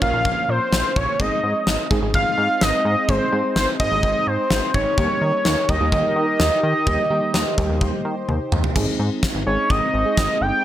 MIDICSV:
0, 0, Header, 1, 6, 480
1, 0, Start_track
1, 0, Key_signature, -4, "major"
1, 0, Tempo, 472441
1, 1217, Time_signature, 4, 2, 24, 8
1, 10814, End_track
2, 0, Start_track
2, 0, Title_t, "Analog synth lead"
2, 0, Program_c, 0, 81
2, 20, Note_on_c, 0, 77, 110
2, 502, Note_on_c, 0, 72, 96
2, 517, Note_off_c, 0, 77, 0
2, 982, Note_on_c, 0, 73, 89
2, 997, Note_off_c, 0, 72, 0
2, 1222, Note_on_c, 0, 75, 95
2, 1237, Note_off_c, 0, 73, 0
2, 1940, Note_off_c, 0, 75, 0
2, 2182, Note_on_c, 0, 77, 118
2, 2661, Note_on_c, 0, 75, 109
2, 2676, Note_off_c, 0, 77, 0
2, 3141, Note_on_c, 0, 72, 101
2, 3156, Note_off_c, 0, 75, 0
2, 3615, Note_off_c, 0, 72, 0
2, 3621, Note_on_c, 0, 72, 89
2, 3728, Note_off_c, 0, 72, 0
2, 3860, Note_on_c, 0, 75, 109
2, 4340, Note_on_c, 0, 72, 101
2, 4355, Note_off_c, 0, 75, 0
2, 4814, Note_off_c, 0, 72, 0
2, 4820, Note_on_c, 0, 73, 109
2, 5779, Note_on_c, 0, 75, 98
2, 5795, Note_off_c, 0, 73, 0
2, 6018, Note_off_c, 0, 75, 0
2, 6023, Note_on_c, 0, 75, 102
2, 8379, Note_off_c, 0, 75, 0
2, 9617, Note_on_c, 0, 73, 85
2, 9856, Note_on_c, 0, 75, 100
2, 9871, Note_off_c, 0, 73, 0
2, 10579, Note_on_c, 0, 79, 104
2, 10594, Note_off_c, 0, 75, 0
2, 10814, Note_off_c, 0, 79, 0
2, 10814, End_track
3, 0, Start_track
3, 0, Title_t, "FM electric piano"
3, 0, Program_c, 1, 5
3, 16, Note_on_c, 1, 58, 70
3, 16, Note_on_c, 1, 61, 64
3, 16, Note_on_c, 1, 70, 76
3, 17, Note_on_c, 1, 65, 63
3, 683, Note_off_c, 1, 58, 0
3, 683, Note_off_c, 1, 61, 0
3, 683, Note_off_c, 1, 65, 0
3, 683, Note_off_c, 1, 70, 0
3, 1216, Note_on_c, 1, 56, 71
3, 1216, Note_on_c, 1, 60, 64
3, 1216, Note_on_c, 1, 63, 66
3, 1216, Note_on_c, 1, 68, 78
3, 1716, Note_off_c, 1, 56, 0
3, 1716, Note_off_c, 1, 60, 0
3, 1716, Note_off_c, 1, 63, 0
3, 1716, Note_off_c, 1, 68, 0
3, 1937, Note_on_c, 1, 56, 81
3, 1937, Note_on_c, 1, 60, 75
3, 1937, Note_on_c, 1, 68, 95
3, 1938, Note_on_c, 1, 63, 79
3, 2020, Note_off_c, 1, 56, 0
3, 2020, Note_off_c, 1, 68, 0
3, 2021, Note_off_c, 1, 60, 0
3, 2021, Note_off_c, 1, 63, 0
3, 2057, Note_on_c, 1, 56, 71
3, 2057, Note_on_c, 1, 60, 64
3, 2057, Note_on_c, 1, 68, 78
3, 2058, Note_on_c, 1, 63, 67
3, 2723, Note_off_c, 1, 56, 0
3, 2723, Note_off_c, 1, 60, 0
3, 2723, Note_off_c, 1, 68, 0
3, 2724, Note_off_c, 1, 63, 0
3, 3137, Note_on_c, 1, 56, 72
3, 3137, Note_on_c, 1, 68, 77
3, 3138, Note_on_c, 1, 60, 64
3, 3138, Note_on_c, 1, 63, 65
3, 3304, Note_off_c, 1, 56, 0
3, 3304, Note_off_c, 1, 60, 0
3, 3304, Note_off_c, 1, 63, 0
3, 3304, Note_off_c, 1, 68, 0
3, 3377, Note_on_c, 1, 60, 62
3, 3377, Note_on_c, 1, 63, 63
3, 3377, Note_on_c, 1, 68, 77
3, 3378, Note_on_c, 1, 56, 68
3, 3710, Note_off_c, 1, 60, 0
3, 3710, Note_off_c, 1, 63, 0
3, 3710, Note_off_c, 1, 68, 0
3, 3711, Note_off_c, 1, 56, 0
3, 3857, Note_on_c, 1, 60, 65
3, 3857, Note_on_c, 1, 68, 79
3, 3858, Note_on_c, 1, 56, 74
3, 3858, Note_on_c, 1, 63, 63
3, 4523, Note_off_c, 1, 68, 0
3, 4524, Note_off_c, 1, 56, 0
3, 4524, Note_off_c, 1, 60, 0
3, 4524, Note_off_c, 1, 63, 0
3, 5058, Note_on_c, 1, 55, 73
3, 5058, Note_on_c, 1, 58, 66
3, 5058, Note_on_c, 1, 63, 66
3, 5058, Note_on_c, 1, 67, 82
3, 5557, Note_off_c, 1, 58, 0
3, 5557, Note_off_c, 1, 63, 0
3, 5557, Note_off_c, 1, 67, 0
3, 5558, Note_off_c, 1, 55, 0
3, 5779, Note_on_c, 1, 55, 73
3, 5779, Note_on_c, 1, 63, 64
3, 5779, Note_on_c, 1, 67, 79
3, 5780, Note_on_c, 1, 58, 65
3, 5861, Note_off_c, 1, 55, 0
3, 5861, Note_off_c, 1, 63, 0
3, 5862, Note_off_c, 1, 58, 0
3, 5862, Note_off_c, 1, 67, 0
3, 5897, Note_on_c, 1, 55, 73
3, 5897, Note_on_c, 1, 58, 66
3, 5897, Note_on_c, 1, 67, 78
3, 5898, Note_on_c, 1, 63, 66
3, 6563, Note_off_c, 1, 55, 0
3, 6563, Note_off_c, 1, 58, 0
3, 6563, Note_off_c, 1, 67, 0
3, 6564, Note_off_c, 1, 63, 0
3, 6978, Note_on_c, 1, 67, 92
3, 6979, Note_on_c, 1, 55, 82
3, 6979, Note_on_c, 1, 58, 77
3, 6979, Note_on_c, 1, 63, 76
3, 7144, Note_off_c, 1, 67, 0
3, 7145, Note_off_c, 1, 55, 0
3, 7145, Note_off_c, 1, 58, 0
3, 7145, Note_off_c, 1, 63, 0
3, 7216, Note_on_c, 1, 63, 76
3, 7217, Note_on_c, 1, 55, 81
3, 7217, Note_on_c, 1, 58, 75
3, 7217, Note_on_c, 1, 67, 92
3, 7550, Note_off_c, 1, 55, 0
3, 7550, Note_off_c, 1, 58, 0
3, 7550, Note_off_c, 1, 63, 0
3, 7550, Note_off_c, 1, 67, 0
3, 7698, Note_on_c, 1, 55, 83
3, 7698, Note_on_c, 1, 58, 77
3, 7698, Note_on_c, 1, 63, 76
3, 7698, Note_on_c, 1, 67, 95
3, 8364, Note_off_c, 1, 55, 0
3, 8364, Note_off_c, 1, 58, 0
3, 8364, Note_off_c, 1, 63, 0
3, 8364, Note_off_c, 1, 67, 0
3, 8897, Note_on_c, 1, 56, 85
3, 8897, Note_on_c, 1, 60, 80
3, 8897, Note_on_c, 1, 63, 76
3, 8897, Note_on_c, 1, 68, 92
3, 9397, Note_off_c, 1, 56, 0
3, 9397, Note_off_c, 1, 60, 0
3, 9397, Note_off_c, 1, 63, 0
3, 9397, Note_off_c, 1, 68, 0
3, 9615, Note_on_c, 1, 63, 64
3, 9616, Note_on_c, 1, 56, 73
3, 9616, Note_on_c, 1, 60, 66
3, 9616, Note_on_c, 1, 68, 77
3, 10032, Note_off_c, 1, 63, 0
3, 10033, Note_off_c, 1, 56, 0
3, 10033, Note_off_c, 1, 60, 0
3, 10033, Note_off_c, 1, 68, 0
3, 10218, Note_on_c, 1, 56, 71
3, 10218, Note_on_c, 1, 60, 64
3, 10219, Note_on_c, 1, 63, 65
3, 10219, Note_on_c, 1, 68, 78
3, 10634, Note_off_c, 1, 56, 0
3, 10634, Note_off_c, 1, 60, 0
3, 10634, Note_off_c, 1, 63, 0
3, 10634, Note_off_c, 1, 68, 0
3, 10814, End_track
4, 0, Start_track
4, 0, Title_t, "Analog synth pad"
4, 0, Program_c, 2, 89
4, 0, Note_on_c, 2, 53, 80
4, 0, Note_on_c, 2, 58, 73
4, 0, Note_on_c, 2, 61, 88
4, 1178, Note_off_c, 2, 53, 0
4, 1179, Note_off_c, 2, 58, 0
4, 1179, Note_off_c, 2, 61, 0
4, 1219, Note_on_c, 2, 56, 78
4, 1219, Note_on_c, 2, 60, 74
4, 1220, Note_on_c, 2, 63, 91
4, 5020, Note_off_c, 2, 56, 0
4, 5020, Note_off_c, 2, 60, 0
4, 5057, Note_on_c, 2, 70, 90
4, 5059, Note_on_c, 2, 51, 78
4, 5059, Note_on_c, 2, 67, 70
4, 6958, Note_off_c, 2, 70, 0
4, 6978, Note_on_c, 2, 72, 89
4, 8858, Note_off_c, 2, 63, 0
4, 8860, Note_off_c, 2, 51, 0
4, 8860, Note_off_c, 2, 67, 0
4, 8879, Note_off_c, 2, 72, 0
4, 8896, Note_on_c, 2, 56, 80
4, 8896, Note_on_c, 2, 63, 89
4, 8897, Note_on_c, 2, 60, 73
4, 10814, Note_off_c, 2, 56, 0
4, 10814, Note_off_c, 2, 60, 0
4, 10814, Note_off_c, 2, 63, 0
4, 10814, End_track
5, 0, Start_track
5, 0, Title_t, "Analog synth bass"
5, 0, Program_c, 3, 38
5, 18, Note_on_c, 3, 34, 95
5, 124, Note_off_c, 3, 34, 0
5, 135, Note_on_c, 3, 34, 98
5, 243, Note_off_c, 3, 34, 0
5, 255, Note_on_c, 3, 34, 105
5, 363, Note_off_c, 3, 34, 0
5, 495, Note_on_c, 3, 46, 92
5, 603, Note_off_c, 3, 46, 0
5, 734, Note_on_c, 3, 34, 108
5, 842, Note_off_c, 3, 34, 0
5, 979, Note_on_c, 3, 34, 96
5, 1085, Note_off_c, 3, 34, 0
5, 1216, Note_on_c, 3, 32, 97
5, 1323, Note_off_c, 3, 32, 0
5, 1455, Note_on_c, 3, 44, 91
5, 1563, Note_off_c, 3, 44, 0
5, 1695, Note_on_c, 3, 32, 93
5, 1803, Note_off_c, 3, 32, 0
5, 1938, Note_on_c, 3, 32, 102
5, 2044, Note_off_c, 3, 32, 0
5, 2055, Note_on_c, 3, 32, 98
5, 2163, Note_off_c, 3, 32, 0
5, 2175, Note_on_c, 3, 32, 103
5, 2283, Note_off_c, 3, 32, 0
5, 2415, Note_on_c, 3, 44, 98
5, 2523, Note_off_c, 3, 44, 0
5, 2655, Note_on_c, 3, 32, 107
5, 2763, Note_off_c, 3, 32, 0
5, 2895, Note_on_c, 3, 44, 106
5, 3003, Note_off_c, 3, 44, 0
5, 3136, Note_on_c, 3, 32, 104
5, 3244, Note_off_c, 3, 32, 0
5, 3376, Note_on_c, 3, 44, 101
5, 3483, Note_off_c, 3, 44, 0
5, 3615, Note_on_c, 3, 32, 96
5, 3723, Note_off_c, 3, 32, 0
5, 3859, Note_on_c, 3, 32, 102
5, 3965, Note_off_c, 3, 32, 0
5, 3976, Note_on_c, 3, 32, 95
5, 4083, Note_off_c, 3, 32, 0
5, 4095, Note_on_c, 3, 32, 106
5, 4203, Note_off_c, 3, 32, 0
5, 4337, Note_on_c, 3, 44, 95
5, 4444, Note_off_c, 3, 44, 0
5, 4577, Note_on_c, 3, 32, 105
5, 4684, Note_off_c, 3, 32, 0
5, 4820, Note_on_c, 3, 32, 95
5, 4925, Note_off_c, 3, 32, 0
5, 5058, Note_on_c, 3, 39, 104
5, 5164, Note_off_c, 3, 39, 0
5, 5298, Note_on_c, 3, 51, 92
5, 5404, Note_off_c, 3, 51, 0
5, 5538, Note_on_c, 3, 39, 100
5, 5644, Note_off_c, 3, 39, 0
5, 5780, Note_on_c, 3, 39, 95
5, 5886, Note_off_c, 3, 39, 0
5, 5898, Note_on_c, 3, 39, 91
5, 6004, Note_off_c, 3, 39, 0
5, 6017, Note_on_c, 3, 39, 111
5, 6124, Note_off_c, 3, 39, 0
5, 6259, Note_on_c, 3, 51, 95
5, 6365, Note_off_c, 3, 51, 0
5, 6499, Note_on_c, 3, 39, 98
5, 6605, Note_off_c, 3, 39, 0
5, 6740, Note_on_c, 3, 51, 99
5, 6846, Note_off_c, 3, 51, 0
5, 6978, Note_on_c, 3, 39, 103
5, 7084, Note_off_c, 3, 39, 0
5, 7219, Note_on_c, 3, 51, 93
5, 7325, Note_off_c, 3, 51, 0
5, 7459, Note_on_c, 3, 39, 101
5, 7565, Note_off_c, 3, 39, 0
5, 7700, Note_on_c, 3, 39, 108
5, 7806, Note_off_c, 3, 39, 0
5, 7818, Note_on_c, 3, 39, 98
5, 7924, Note_off_c, 3, 39, 0
5, 7937, Note_on_c, 3, 39, 101
5, 8044, Note_off_c, 3, 39, 0
5, 8178, Note_on_c, 3, 51, 93
5, 8284, Note_off_c, 3, 51, 0
5, 8418, Note_on_c, 3, 39, 97
5, 8525, Note_off_c, 3, 39, 0
5, 8657, Note_on_c, 3, 39, 97
5, 8764, Note_off_c, 3, 39, 0
5, 8898, Note_on_c, 3, 32, 104
5, 9004, Note_off_c, 3, 32, 0
5, 9137, Note_on_c, 3, 44, 95
5, 9244, Note_off_c, 3, 44, 0
5, 9498, Note_on_c, 3, 32, 89
5, 9604, Note_off_c, 3, 32, 0
5, 9619, Note_on_c, 3, 32, 105
5, 9725, Note_off_c, 3, 32, 0
5, 9856, Note_on_c, 3, 32, 106
5, 9963, Note_off_c, 3, 32, 0
5, 10097, Note_on_c, 3, 32, 97
5, 10204, Note_off_c, 3, 32, 0
5, 10337, Note_on_c, 3, 32, 101
5, 10444, Note_off_c, 3, 32, 0
5, 10578, Note_on_c, 3, 31, 92
5, 10685, Note_off_c, 3, 31, 0
5, 10814, End_track
6, 0, Start_track
6, 0, Title_t, "Drums"
6, 18, Note_on_c, 9, 36, 99
6, 120, Note_off_c, 9, 36, 0
6, 255, Note_on_c, 9, 36, 86
6, 357, Note_off_c, 9, 36, 0
6, 737, Note_on_c, 9, 38, 108
6, 839, Note_off_c, 9, 38, 0
6, 978, Note_on_c, 9, 36, 93
6, 1080, Note_off_c, 9, 36, 0
6, 1216, Note_on_c, 9, 36, 107
6, 1318, Note_off_c, 9, 36, 0
6, 1696, Note_on_c, 9, 38, 105
6, 1798, Note_off_c, 9, 38, 0
6, 1938, Note_on_c, 9, 36, 94
6, 2040, Note_off_c, 9, 36, 0
6, 2175, Note_on_c, 9, 36, 87
6, 2277, Note_off_c, 9, 36, 0
6, 2656, Note_on_c, 9, 38, 112
6, 2758, Note_off_c, 9, 38, 0
6, 3136, Note_on_c, 9, 36, 106
6, 3238, Note_off_c, 9, 36, 0
6, 3618, Note_on_c, 9, 38, 103
6, 3719, Note_off_c, 9, 38, 0
6, 3859, Note_on_c, 9, 36, 98
6, 3961, Note_off_c, 9, 36, 0
6, 4096, Note_on_c, 9, 36, 86
6, 4197, Note_off_c, 9, 36, 0
6, 4577, Note_on_c, 9, 38, 107
6, 4679, Note_off_c, 9, 38, 0
6, 4820, Note_on_c, 9, 36, 91
6, 4921, Note_off_c, 9, 36, 0
6, 5057, Note_on_c, 9, 36, 109
6, 5159, Note_off_c, 9, 36, 0
6, 5539, Note_on_c, 9, 38, 105
6, 5640, Note_off_c, 9, 38, 0
6, 5780, Note_on_c, 9, 36, 97
6, 5882, Note_off_c, 9, 36, 0
6, 6017, Note_on_c, 9, 36, 86
6, 6119, Note_off_c, 9, 36, 0
6, 6499, Note_on_c, 9, 38, 113
6, 6601, Note_off_c, 9, 38, 0
6, 6978, Note_on_c, 9, 36, 106
6, 7080, Note_off_c, 9, 36, 0
6, 7459, Note_on_c, 9, 38, 102
6, 7560, Note_off_c, 9, 38, 0
6, 7700, Note_on_c, 9, 36, 96
6, 7802, Note_off_c, 9, 36, 0
6, 7937, Note_on_c, 9, 36, 86
6, 8039, Note_off_c, 9, 36, 0
6, 8419, Note_on_c, 9, 48, 54
6, 8520, Note_off_c, 9, 48, 0
6, 8658, Note_on_c, 9, 45, 87
6, 8760, Note_off_c, 9, 45, 0
6, 8777, Note_on_c, 9, 43, 85
6, 8879, Note_off_c, 9, 43, 0
6, 8897, Note_on_c, 9, 36, 109
6, 8897, Note_on_c, 9, 49, 88
6, 8999, Note_off_c, 9, 36, 0
6, 8999, Note_off_c, 9, 49, 0
6, 9376, Note_on_c, 9, 36, 109
6, 9377, Note_on_c, 9, 38, 105
6, 9478, Note_off_c, 9, 36, 0
6, 9478, Note_off_c, 9, 38, 0
6, 9856, Note_on_c, 9, 36, 106
6, 9958, Note_off_c, 9, 36, 0
6, 10337, Note_on_c, 9, 36, 113
6, 10338, Note_on_c, 9, 38, 109
6, 10439, Note_off_c, 9, 36, 0
6, 10439, Note_off_c, 9, 38, 0
6, 10814, End_track
0, 0, End_of_file